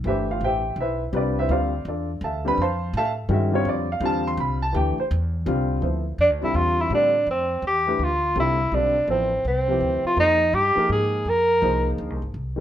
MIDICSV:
0, 0, Header, 1, 5, 480
1, 0, Start_track
1, 0, Tempo, 361664
1, 548, Time_signature, 3, 2, 24, 8
1, 16727, End_track
2, 0, Start_track
2, 0, Title_t, "Grand piano"
2, 0, Program_c, 0, 0
2, 70, Note_on_c, 0, 52, 59
2, 76, Note_on_c, 0, 57, 62
2, 86, Note_on_c, 0, 62, 58
2, 95, Note_on_c, 0, 76, 80
2, 98, Note_on_c, 0, 67, 70
2, 101, Note_on_c, 0, 71, 65
2, 101, Note_on_c, 0, 72, 59
2, 104, Note_on_c, 0, 64, 57
2, 385, Note_off_c, 0, 76, 0
2, 388, Note_off_c, 0, 71, 0
2, 388, Note_off_c, 0, 72, 0
2, 389, Note_off_c, 0, 64, 0
2, 412, Note_on_c, 0, 77, 78
2, 421, Note_on_c, 0, 65, 64
2, 559, Note_off_c, 0, 77, 0
2, 564, Note_off_c, 0, 65, 0
2, 574, Note_off_c, 0, 67, 0
2, 586, Note_on_c, 0, 72, 66
2, 589, Note_on_c, 0, 76, 73
2, 589, Note_on_c, 0, 79, 83
2, 594, Note_on_c, 0, 67, 67
2, 798, Note_off_c, 0, 52, 0
2, 801, Note_off_c, 0, 57, 0
2, 806, Note_off_c, 0, 62, 0
2, 1014, Note_off_c, 0, 72, 0
2, 1015, Note_off_c, 0, 76, 0
2, 1016, Note_off_c, 0, 79, 0
2, 1018, Note_off_c, 0, 67, 0
2, 1068, Note_on_c, 0, 76, 77
2, 1070, Note_on_c, 0, 72, 67
2, 1078, Note_on_c, 0, 64, 62
2, 1079, Note_on_c, 0, 71, 67
2, 1350, Note_off_c, 0, 76, 0
2, 1351, Note_off_c, 0, 72, 0
2, 1355, Note_off_c, 0, 64, 0
2, 1356, Note_off_c, 0, 71, 0
2, 1494, Note_on_c, 0, 55, 67
2, 1494, Note_on_c, 0, 60, 54
2, 1509, Note_on_c, 0, 65, 54
2, 1517, Note_on_c, 0, 71, 68
2, 1546, Note_on_c, 0, 74, 74
2, 1553, Note_on_c, 0, 62, 55
2, 1829, Note_off_c, 0, 74, 0
2, 1830, Note_off_c, 0, 71, 0
2, 1832, Note_off_c, 0, 62, 0
2, 1845, Note_on_c, 0, 76, 84
2, 1850, Note_on_c, 0, 64, 63
2, 1850, Note_on_c, 0, 71, 71
2, 1858, Note_on_c, 0, 72, 64
2, 1973, Note_off_c, 0, 55, 0
2, 1975, Note_off_c, 0, 60, 0
2, 1979, Note_on_c, 0, 50, 62
2, 1984, Note_off_c, 0, 65, 0
2, 1993, Note_off_c, 0, 72, 0
2, 1993, Note_on_c, 0, 55, 59
2, 1994, Note_off_c, 0, 76, 0
2, 1995, Note_on_c, 0, 60, 58
2, 1997, Note_off_c, 0, 64, 0
2, 1997, Note_off_c, 0, 71, 0
2, 2004, Note_on_c, 0, 65, 74
2, 2008, Note_on_c, 0, 77, 84
2, 2013, Note_on_c, 0, 72, 63
2, 2016, Note_on_c, 0, 74, 66
2, 2262, Note_off_c, 0, 50, 0
2, 2269, Note_off_c, 0, 55, 0
2, 2270, Note_off_c, 0, 60, 0
2, 2275, Note_off_c, 0, 65, 0
2, 2442, Note_off_c, 0, 77, 0
2, 2445, Note_off_c, 0, 72, 0
2, 2447, Note_off_c, 0, 74, 0
2, 2499, Note_on_c, 0, 65, 48
2, 2501, Note_on_c, 0, 74, 56
2, 2503, Note_on_c, 0, 62, 47
2, 2509, Note_on_c, 0, 69, 47
2, 2784, Note_off_c, 0, 65, 0
2, 2785, Note_off_c, 0, 74, 0
2, 2786, Note_off_c, 0, 62, 0
2, 2789, Note_off_c, 0, 69, 0
2, 2974, Note_on_c, 0, 81, 70
2, 2975, Note_on_c, 0, 69, 58
2, 2981, Note_on_c, 0, 77, 52
2, 2987, Note_on_c, 0, 76, 57
2, 3248, Note_on_c, 0, 50, 71
2, 3256, Note_on_c, 0, 55, 71
2, 3259, Note_on_c, 0, 60, 60
2, 3261, Note_off_c, 0, 69, 0
2, 3261, Note_off_c, 0, 81, 0
2, 3264, Note_off_c, 0, 77, 0
2, 3267, Note_off_c, 0, 76, 0
2, 3270, Note_on_c, 0, 62, 75
2, 3288, Note_on_c, 0, 71, 78
2, 3288, Note_on_c, 0, 83, 102
2, 3401, Note_off_c, 0, 50, 0
2, 3405, Note_off_c, 0, 55, 0
2, 3407, Note_off_c, 0, 60, 0
2, 3413, Note_off_c, 0, 62, 0
2, 3434, Note_off_c, 0, 71, 0
2, 3434, Note_off_c, 0, 83, 0
2, 3470, Note_on_c, 0, 81, 70
2, 3471, Note_on_c, 0, 72, 78
2, 3471, Note_on_c, 0, 84, 90
2, 3472, Note_on_c, 0, 77, 73
2, 3893, Note_off_c, 0, 72, 0
2, 3893, Note_off_c, 0, 81, 0
2, 3893, Note_off_c, 0, 84, 0
2, 3894, Note_off_c, 0, 77, 0
2, 3944, Note_on_c, 0, 81, 104
2, 3947, Note_on_c, 0, 77, 92
2, 3951, Note_on_c, 0, 69, 90
2, 3957, Note_on_c, 0, 76, 87
2, 4117, Note_off_c, 0, 81, 0
2, 4120, Note_off_c, 0, 77, 0
2, 4123, Note_off_c, 0, 69, 0
2, 4127, Note_off_c, 0, 76, 0
2, 4363, Note_on_c, 0, 51, 69
2, 4367, Note_on_c, 0, 56, 58
2, 4381, Note_on_c, 0, 61, 71
2, 4389, Note_on_c, 0, 66, 70
2, 4421, Note_on_c, 0, 76, 74
2, 4651, Note_off_c, 0, 51, 0
2, 4653, Note_off_c, 0, 56, 0
2, 4660, Note_off_c, 0, 61, 0
2, 4664, Note_off_c, 0, 66, 0
2, 4671, Note_on_c, 0, 50, 77
2, 4680, Note_on_c, 0, 55, 63
2, 4690, Note_on_c, 0, 60, 68
2, 4698, Note_on_c, 0, 65, 74
2, 4702, Note_off_c, 0, 76, 0
2, 4714, Note_on_c, 0, 73, 89
2, 4865, Note_off_c, 0, 73, 0
2, 4896, Note_on_c, 0, 74, 81
2, 5097, Note_off_c, 0, 50, 0
2, 5102, Note_off_c, 0, 55, 0
2, 5106, Note_off_c, 0, 60, 0
2, 5111, Note_off_c, 0, 65, 0
2, 5179, Note_off_c, 0, 74, 0
2, 5204, Note_on_c, 0, 77, 94
2, 5322, Note_on_c, 0, 50, 81
2, 5335, Note_on_c, 0, 55, 69
2, 5340, Note_on_c, 0, 60, 66
2, 5349, Note_off_c, 0, 77, 0
2, 5353, Note_on_c, 0, 65, 85
2, 5381, Note_on_c, 0, 81, 97
2, 5661, Note_off_c, 0, 81, 0
2, 5673, Note_on_c, 0, 84, 95
2, 5823, Note_off_c, 0, 84, 0
2, 5843, Note_on_c, 0, 83, 86
2, 6057, Note_off_c, 0, 50, 0
2, 6064, Note_off_c, 0, 55, 0
2, 6066, Note_off_c, 0, 60, 0
2, 6073, Note_off_c, 0, 65, 0
2, 6132, Note_off_c, 0, 83, 0
2, 6137, Note_on_c, 0, 81, 93
2, 6272, Note_on_c, 0, 52, 68
2, 6292, Note_on_c, 0, 57, 61
2, 6295, Note_off_c, 0, 81, 0
2, 6297, Note_on_c, 0, 62, 60
2, 6300, Note_on_c, 0, 67, 73
2, 6318, Note_on_c, 0, 79, 82
2, 6564, Note_off_c, 0, 52, 0
2, 6573, Note_off_c, 0, 57, 0
2, 6576, Note_off_c, 0, 62, 0
2, 6577, Note_off_c, 0, 67, 0
2, 6609, Note_off_c, 0, 79, 0
2, 6632, Note_on_c, 0, 72, 80
2, 6725, Note_off_c, 0, 72, 0
2, 7245, Note_on_c, 0, 50, 67
2, 7251, Note_on_c, 0, 55, 66
2, 7259, Note_on_c, 0, 60, 71
2, 7266, Note_on_c, 0, 65, 81
2, 7717, Note_on_c, 0, 53, 48
2, 7724, Note_on_c, 0, 59, 46
2, 7729, Note_off_c, 0, 50, 0
2, 7730, Note_on_c, 0, 64, 44
2, 7731, Note_off_c, 0, 55, 0
2, 7735, Note_on_c, 0, 69, 44
2, 7736, Note_off_c, 0, 60, 0
2, 7739, Note_off_c, 0, 65, 0
2, 7742, Note_on_c, 0, 72, 55
2, 8005, Note_off_c, 0, 53, 0
2, 8009, Note_off_c, 0, 59, 0
2, 8012, Note_off_c, 0, 64, 0
2, 8015, Note_off_c, 0, 69, 0
2, 8018, Note_off_c, 0, 72, 0
2, 8513, Note_on_c, 0, 50, 71
2, 8521, Note_on_c, 0, 55, 61
2, 8529, Note_on_c, 0, 60, 58
2, 8533, Note_on_c, 0, 65, 57
2, 8545, Note_on_c, 0, 69, 73
2, 9133, Note_off_c, 0, 50, 0
2, 9138, Note_off_c, 0, 55, 0
2, 9142, Note_off_c, 0, 60, 0
2, 9143, Note_off_c, 0, 65, 0
2, 9149, Note_off_c, 0, 69, 0
2, 9168, Note_on_c, 0, 50, 59
2, 9173, Note_on_c, 0, 55, 58
2, 9178, Note_on_c, 0, 60, 56
2, 9187, Note_on_c, 0, 65, 58
2, 9197, Note_on_c, 0, 69, 62
2, 9452, Note_off_c, 0, 50, 0
2, 9454, Note_off_c, 0, 55, 0
2, 9457, Note_off_c, 0, 60, 0
2, 9461, Note_off_c, 0, 65, 0
2, 9466, Note_off_c, 0, 69, 0
2, 10438, Note_on_c, 0, 52, 57
2, 10450, Note_on_c, 0, 57, 53
2, 10455, Note_on_c, 0, 62, 55
2, 10463, Note_on_c, 0, 67, 57
2, 10465, Note_on_c, 0, 71, 66
2, 10594, Note_off_c, 0, 52, 0
2, 10599, Note_off_c, 0, 57, 0
2, 10602, Note_off_c, 0, 62, 0
2, 10606, Note_off_c, 0, 67, 0
2, 10607, Note_off_c, 0, 71, 0
2, 11089, Note_on_c, 0, 50, 56
2, 11091, Note_on_c, 0, 55, 53
2, 11093, Note_on_c, 0, 60, 55
2, 11102, Note_on_c, 0, 65, 52
2, 11110, Note_on_c, 0, 69, 64
2, 11374, Note_off_c, 0, 50, 0
2, 11375, Note_off_c, 0, 55, 0
2, 11376, Note_off_c, 0, 60, 0
2, 11380, Note_off_c, 0, 65, 0
2, 11384, Note_off_c, 0, 69, 0
2, 11580, Note_on_c, 0, 50, 53
2, 11588, Note_on_c, 0, 55, 47
2, 11597, Note_on_c, 0, 60, 54
2, 11602, Note_on_c, 0, 65, 46
2, 11603, Note_on_c, 0, 69, 58
2, 11860, Note_off_c, 0, 50, 0
2, 11864, Note_off_c, 0, 55, 0
2, 11868, Note_off_c, 0, 60, 0
2, 11870, Note_off_c, 0, 65, 0
2, 11871, Note_off_c, 0, 69, 0
2, 12052, Note_on_c, 0, 53, 59
2, 12060, Note_on_c, 0, 59, 57
2, 12066, Note_on_c, 0, 64, 49
2, 12076, Note_on_c, 0, 69, 56
2, 12078, Note_on_c, 0, 72, 62
2, 12336, Note_off_c, 0, 53, 0
2, 12340, Note_off_c, 0, 59, 0
2, 12343, Note_off_c, 0, 64, 0
2, 12348, Note_off_c, 0, 69, 0
2, 12349, Note_off_c, 0, 72, 0
2, 12844, Note_on_c, 0, 48, 57
2, 12854, Note_on_c, 0, 53, 53
2, 12864, Note_on_c, 0, 71, 52
2, 12873, Note_on_c, 0, 64, 53
2, 12875, Note_on_c, 0, 67, 67
2, 13463, Note_off_c, 0, 48, 0
2, 13468, Note_off_c, 0, 53, 0
2, 13473, Note_off_c, 0, 71, 0
2, 13478, Note_off_c, 0, 64, 0
2, 13478, Note_off_c, 0, 67, 0
2, 13495, Note_on_c, 0, 53, 52
2, 13499, Note_on_c, 0, 58, 46
2, 13507, Note_on_c, 0, 63, 41
2, 13515, Note_on_c, 0, 68, 42
2, 13519, Note_on_c, 0, 72, 54
2, 13779, Note_off_c, 0, 53, 0
2, 13781, Note_off_c, 0, 58, 0
2, 13785, Note_off_c, 0, 63, 0
2, 13789, Note_off_c, 0, 68, 0
2, 13791, Note_off_c, 0, 72, 0
2, 14269, Note_on_c, 0, 53, 55
2, 14278, Note_on_c, 0, 63, 54
2, 14281, Note_on_c, 0, 58, 54
2, 14294, Note_on_c, 0, 68, 50
2, 14302, Note_on_c, 0, 70, 72
2, 14897, Note_off_c, 0, 53, 0
2, 14901, Note_off_c, 0, 63, 0
2, 14903, Note_off_c, 0, 58, 0
2, 14909, Note_off_c, 0, 68, 0
2, 14913, Note_off_c, 0, 70, 0
2, 15417, Note_on_c, 0, 53, 67
2, 15421, Note_on_c, 0, 58, 57
2, 15424, Note_on_c, 0, 63, 56
2, 15437, Note_on_c, 0, 68, 63
2, 15442, Note_on_c, 0, 72, 67
2, 16151, Note_off_c, 0, 53, 0
2, 16153, Note_off_c, 0, 58, 0
2, 16154, Note_off_c, 0, 63, 0
2, 16161, Note_off_c, 0, 68, 0
2, 16163, Note_off_c, 0, 72, 0
2, 16670, Note_on_c, 0, 51, 57
2, 16681, Note_on_c, 0, 56, 49
2, 16684, Note_on_c, 0, 62, 53
2, 16727, Note_off_c, 0, 51, 0
2, 16727, Note_off_c, 0, 56, 0
2, 16727, Note_off_c, 0, 62, 0
2, 16727, End_track
3, 0, Start_track
3, 0, Title_t, "Tenor saxophone"
3, 0, Program_c, 1, 66
3, 8236, Note_on_c, 1, 62, 70
3, 8371, Note_off_c, 1, 62, 0
3, 8547, Note_on_c, 1, 64, 70
3, 8709, Note_on_c, 1, 65, 77
3, 8729, Note_off_c, 1, 64, 0
3, 9037, Note_on_c, 1, 64, 75
3, 9057, Note_off_c, 1, 65, 0
3, 9189, Note_off_c, 1, 64, 0
3, 9217, Note_on_c, 1, 62, 80
3, 9643, Note_off_c, 1, 62, 0
3, 9692, Note_on_c, 1, 60, 73
3, 10121, Note_off_c, 1, 60, 0
3, 10179, Note_on_c, 1, 67, 85
3, 10662, Note_on_c, 1, 65, 91
3, 10682, Note_off_c, 1, 67, 0
3, 11119, Note_off_c, 1, 65, 0
3, 11145, Note_on_c, 1, 64, 85
3, 11610, Note_on_c, 1, 62, 77
3, 11630, Note_off_c, 1, 64, 0
3, 12074, Note_off_c, 1, 62, 0
3, 12085, Note_on_c, 1, 60, 75
3, 12519, Note_off_c, 1, 60, 0
3, 12575, Note_on_c, 1, 60, 76
3, 13297, Note_off_c, 1, 60, 0
3, 13360, Note_on_c, 1, 65, 81
3, 13503, Note_off_c, 1, 65, 0
3, 13535, Note_on_c, 1, 63, 99
3, 13999, Note_on_c, 1, 67, 90
3, 14019, Note_off_c, 1, 63, 0
3, 14471, Note_off_c, 1, 67, 0
3, 14497, Note_on_c, 1, 68, 86
3, 14984, Note_on_c, 1, 70, 97
3, 15004, Note_off_c, 1, 68, 0
3, 15757, Note_off_c, 1, 70, 0
3, 16727, End_track
4, 0, Start_track
4, 0, Title_t, "Upright bass"
4, 0, Program_c, 2, 32
4, 54, Note_on_c, 2, 31, 88
4, 526, Note_off_c, 2, 31, 0
4, 539, Note_on_c, 2, 33, 79
4, 1001, Note_off_c, 2, 33, 0
4, 1009, Note_on_c, 2, 35, 90
4, 1482, Note_off_c, 2, 35, 0
4, 1497, Note_on_c, 2, 36, 85
4, 1966, Note_off_c, 2, 36, 0
4, 1977, Note_on_c, 2, 38, 85
4, 2445, Note_off_c, 2, 38, 0
4, 2456, Note_on_c, 2, 40, 85
4, 2924, Note_off_c, 2, 40, 0
4, 2933, Note_on_c, 2, 38, 89
4, 3402, Note_off_c, 2, 38, 0
4, 3418, Note_on_c, 2, 41, 80
4, 3884, Note_off_c, 2, 41, 0
4, 3895, Note_on_c, 2, 45, 95
4, 4355, Note_off_c, 2, 45, 0
4, 4363, Note_on_c, 2, 43, 87
4, 4835, Note_off_c, 2, 43, 0
4, 4846, Note_on_c, 2, 41, 85
4, 5307, Note_off_c, 2, 41, 0
4, 5315, Note_on_c, 2, 40, 98
4, 5790, Note_off_c, 2, 40, 0
4, 5805, Note_on_c, 2, 36, 93
4, 6274, Note_off_c, 2, 36, 0
4, 6298, Note_on_c, 2, 38, 91
4, 6586, Note_off_c, 2, 38, 0
4, 6780, Note_on_c, 2, 40, 101
4, 7242, Note_off_c, 2, 40, 0
4, 7250, Note_on_c, 2, 36, 96
4, 7717, Note_off_c, 2, 36, 0
4, 7724, Note_on_c, 2, 38, 73
4, 8194, Note_off_c, 2, 38, 0
4, 8206, Note_on_c, 2, 41, 81
4, 8363, Note_off_c, 2, 41, 0
4, 8363, Note_on_c, 2, 38, 55
4, 8514, Note_off_c, 2, 38, 0
4, 8522, Note_on_c, 2, 36, 58
4, 8676, Note_off_c, 2, 36, 0
4, 8683, Note_on_c, 2, 40, 77
4, 9154, Note_off_c, 2, 40, 0
4, 9161, Note_on_c, 2, 45, 77
4, 9633, Note_off_c, 2, 45, 0
4, 9643, Note_on_c, 2, 41, 81
4, 10108, Note_off_c, 2, 41, 0
4, 10116, Note_on_c, 2, 40, 78
4, 10591, Note_off_c, 2, 40, 0
4, 10607, Note_on_c, 2, 38, 76
4, 11077, Note_off_c, 2, 38, 0
4, 11090, Note_on_c, 2, 36, 85
4, 11559, Note_off_c, 2, 36, 0
4, 11569, Note_on_c, 2, 35, 80
4, 12039, Note_off_c, 2, 35, 0
4, 12046, Note_on_c, 2, 33, 81
4, 12518, Note_off_c, 2, 33, 0
4, 12538, Note_on_c, 2, 36, 77
4, 13004, Note_off_c, 2, 36, 0
4, 13013, Note_on_c, 2, 38, 72
4, 13307, Note_off_c, 2, 38, 0
4, 13492, Note_on_c, 2, 41, 78
4, 13963, Note_off_c, 2, 41, 0
4, 13976, Note_on_c, 2, 43, 81
4, 14269, Note_off_c, 2, 43, 0
4, 14457, Note_on_c, 2, 44, 78
4, 14926, Note_off_c, 2, 44, 0
4, 14934, Note_on_c, 2, 41, 71
4, 15405, Note_off_c, 2, 41, 0
4, 15423, Note_on_c, 2, 36, 84
4, 15889, Note_off_c, 2, 36, 0
4, 15904, Note_on_c, 2, 38, 81
4, 16059, Note_off_c, 2, 38, 0
4, 16059, Note_on_c, 2, 36, 48
4, 16212, Note_off_c, 2, 36, 0
4, 16220, Note_on_c, 2, 32, 59
4, 16371, Note_off_c, 2, 32, 0
4, 16378, Note_on_c, 2, 36, 74
4, 16727, Note_off_c, 2, 36, 0
4, 16727, End_track
5, 0, Start_track
5, 0, Title_t, "Muted upright bass strokes"
5, 6609, Note_on_c, 9, 29, 43
5, 6742, Note_off_c, 9, 29, 0
5, 13327, Note_on_c, 9, 29, 34
5, 13460, Note_off_c, 9, 29, 0
5, 14290, Note_on_c, 9, 29, 32
5, 14422, Note_off_c, 9, 29, 0
5, 16727, End_track
0, 0, End_of_file